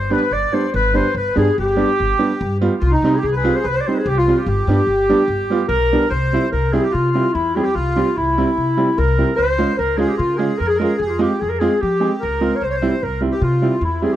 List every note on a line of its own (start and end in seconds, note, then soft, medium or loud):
0.00 0.13 G1 medium
0.00 0.14 C5 medium
0.10 0.21 G3 medium
0.10 0.21 B3 medium
0.10 0.21 D4 medium
0.10 0.33 B4 medium
0.10 0.34 B4 loud
0.31 0.44 G1 medium
0.31 0.70 D5 medium
0.31 0.55 D5 medium
0.52 0.63 G3 medium
0.52 0.63 B3 medium
0.52 0.63 D4 medium
0.52 0.74 C5 medium
0.74 0.99 G1 loud
0.74 1.15 B4 medium
0.74 0.98 B4 loud
0.94 1.05 G3 medium
0.94 1.05 B3 medium
0.94 1.04 D4 medium
0.94 1.16 C5 medium
1.15 1.27 G1 medium
1.15 1.35 B4 medium
1.15 1.36 B4 medium
1.35 1.49 G2 medium
1.35 1.46 G3 medium
1.35 1.46 B3 medium
1.35 1.47 D4 medium
1.35 1.55 G#4 medium
1.35 1.57 G#4 medium
1.58 1.83 G1 medium
1.58 2.57 G4 medium
1.58 2.58 G4 medium
1.76 1.87 G3 medium
1.76 1.88 B3 medium
1.76 1.88 D4 medium
2.00 2.12 G1 medium
2.19 2.29 G3 medium
2.19 2.30 B3 medium
2.19 2.30 D4 medium
2.41 2.66 G2 loud
2.61 2.72 G3 medium
2.61 2.72 B3 medium
2.61 2.72 F4 medium
2.79 2.94 C2 loud
2.79 2.91 F4 medium
2.85 2.93 F4 medium
2.91 3.18 D#4 medium
2.91 3.16 D#4 medium
3.02 3.15 C3 medium
3.02 3.13 G3 medium
3.02 3.14 C4 medium
3.02 3.14 D#4 medium
3.15 3.23 G4 medium
3.15 3.21 G#4 medium
3.20 3.48 C2 medium
3.20 3.27 G4 medium
3.20 3.30 G#4 medium
3.26 3.35 G#4 medium
3.32 3.38 B4 medium
3.36 3.65 G#4 medium
3.36 3.57 B4 medium
3.44 3.54 G3 medium
3.44 3.55 C4 medium
3.44 3.55 F4 medium
3.56 3.69 C5 medium
3.63 3.77 C2 medium
3.63 3.75 B4 medium
3.63 3.78 B4 medium
3.73 4.06 C5 medium
3.73 3.82 C5 medium
3.81 3.89 D5 medium
3.87 3.97 G3 medium
3.87 3.97 C4 medium
3.87 3.97 D#4 medium
3.87 3.96 C5 medium
3.95 4.10 G#4 medium
3.95 4.00 B4 soft
4.06 4.31 C2 loud
4.06 4.16 G4 medium
4.06 4.20 G4 medium
4.17 4.49 F4 medium
4.17 4.40 F4 medium
4.27 4.37 G3 medium
4.27 4.38 C4 medium
4.27 4.38 F4 medium
4.38 4.47 G4 medium
4.46 4.59 G1 loud
4.46 5.66 G4 medium
4.46 5.67 G4 medium
4.67 4.80 G2 medium
4.67 4.78 G3 medium
4.67 4.79 B3 medium
4.67 4.79 D4 medium
4.87 5.12 G1 medium
5.09 5.19 G3 medium
5.09 5.20 B3 medium
5.09 5.20 D4 medium
5.28 5.41 G1 medium
5.50 5.60 G3 medium
5.50 5.61 B3 medium
5.50 5.61 F4 medium
5.68 5.94 B1 loud
5.68 6.07 A#4 loud
5.68 6.12 A#4 medium
5.93 6.02 G3 medium
5.93 6.02 B3 medium
5.93 6.02 D4 medium
6.10 6.35 C2 medium
6.10 6.49 C5 loud
6.10 6.49 C5 medium
6.33 6.43 G3 medium
6.33 6.43 C4 medium
6.33 6.43 E4 medium
6.52 6.77 C2 medium
6.52 6.73 A#4 medium
6.52 6.74 A#4 medium
6.72 6.84 G3 medium
6.72 6.83 C4 medium
6.72 6.84 E4 medium
6.72 6.82 G#4 medium
6.72 6.85 G#4 medium
6.82 6.93 G4 medium
6.82 6.94 G4 medium
6.90 7.10 F4 medium
6.90 7.35 F4 medium
6.94 7.19 C3 medium
7.11 7.25 G3 medium
7.11 7.25 C4 medium
7.11 7.32 F4 medium
7.15 7.25 E4 medium
7.32 7.59 E2 medium
7.32 7.62 E4 medium
7.32 7.57 E4 medium
7.56 7.66 G3 medium
7.56 7.66 C4 medium
7.56 7.66 G4 medium
7.56 7.66 G#4 medium
7.62 7.74 G4 medium
7.62 7.77 G4 medium
7.74 8.00 C2 medium
7.74 8.17 F4 medium
7.74 8.18 F4 medium
7.96 8.06 G3 medium
7.96 8.06 C4 medium
7.96 8.06 G4 medium
8.15 8.42 C2 medium
8.15 8.99 E4 medium
8.15 9.00 E4 medium
8.38 8.47 G3 medium
8.38 8.47 C4 medium
8.38 8.47 E4 medium
8.58 8.82 C3 medium
8.77 8.87 G3 medium
8.77 8.88 C4 medium
8.77 8.88 E4 medium
8.97 9.22 C2 loud
8.97 9.39 A#4 medium
8.97 9.35 A#4 medium
9.18 9.28 G3 medium
9.18 9.29 C4 medium
9.18 9.29 E4 medium
9.36 9.63 C#2 medium
9.36 9.75 C5 loud
9.36 9.79 C5 medium
9.58 9.69 G#3 medium
9.58 9.69 C#4 medium
9.58 9.68 F4 medium
9.78 10.03 C#2 medium
9.78 9.99 A#4 medium
9.97 10.08 G#3 medium
9.97 10.08 C#4 medium
9.97 10.09 F4 medium
9.97 10.09 G#4 medium
9.97 10.20 G#4 medium
10.08 10.17 G4 medium
10.17 10.44 C#3 medium
10.17 10.39 F4 medium
10.17 10.35 F4 medium
10.34 10.59 G#4 medium
10.34 10.60 G#4 medium
10.34 10.39 A#4 medium
10.39 10.49 G#3 medium
10.39 10.49 C#4 medium
10.39 10.49 F4 medium
10.58 10.84 F2 medium
10.58 10.69 A#4 loud
10.58 10.69 A#4 medium
10.67 10.80 G#4 medium
10.67 10.76 G#4 medium
10.75 10.82 A#4 medium
10.75 10.97 A#4 medium
10.79 10.90 G#3 medium
10.79 10.91 C#4 medium
10.79 10.91 F4 medium
10.79 11.00 G#4 medium
10.98 11.24 F2 medium
10.98 11.05 G#4 medium
10.98 11.21 G#4 medium
11.06 11.21 F4 medium
11.06 11.10 G4 medium
11.19 11.30 G#3 medium
11.19 11.30 C4 medium
11.19 11.30 F4 medium
11.19 11.42 G4 medium
11.40 11.66 F2 medium
11.40 11.51 G#4 medium
11.40 11.57 G#4 medium
11.49 11.61 A#4 medium
11.59 11.71 G#3 medium
11.59 11.71 C4 medium
11.59 11.71 F4 medium
11.59 11.81 G#4 medium
11.59 11.82 G#4 medium
11.80 12.06 F3 medium
11.80 12.10 G4 medium
11.80 12.23 G4 medium
12.00 12.11 G#3 medium
12.00 12.11 C4 medium
12.00 12.11 G#4 medium
12.20 12.47 C#2 medium
12.20 12.62 A#4 medium
12.20 12.57 A#4 medium
12.41 12.51 G#3 medium
12.41 12.51 C4 medium
12.41 12.52 F4 medium
12.56 12.66 C#5 medium
12.62 12.86 C2 medium
12.62 12.69 C5 medium
12.62 13.05 C5 medium
12.70 12.76 C#5 medium
12.75 13.03 C5 medium
12.82 12.92 G3 medium
12.82 12.92 C4 medium
12.82 12.92 E4 medium
13.03 13.27 C2 medium
13.03 13.21 A#4 medium
13.03 13.23 A#4 medium
13.21 13.31 G3 medium
13.21 13.32 C4 medium
13.21 13.32 E4 medium
13.31 13.42 G4 medium
13.31 13.45 G4 medium
13.41 13.66 C3 medium
13.41 13.83 F4 medium
13.41 13.86 F4 medium
13.62 13.72 G3 medium
13.62 13.72 C4 medium
13.62 13.72 E4 medium
13.81 14.06 E2 medium
13.81 14.03 E4 medium
13.81 14.04 E4 medium
14.02 14.12 G3 medium
14.02 14.13 C4 medium
14.02 14.12 E4 medium
14.02 14.13 G#4 medium
14.11 14.16 G4 medium